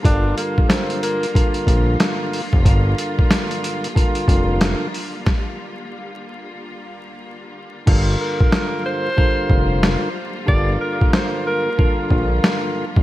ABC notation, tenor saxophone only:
X:1
M:4/4
L:1/16
Q:"Swing 16ths" 1/4=92
K:Gm
V:1 name="Tenor saxophone"
D2 B,2 C2 B,3 z6 z | z16 | z16 | z2 B4 c6 z4 |
d2 B2 c2 B3 z6 z |]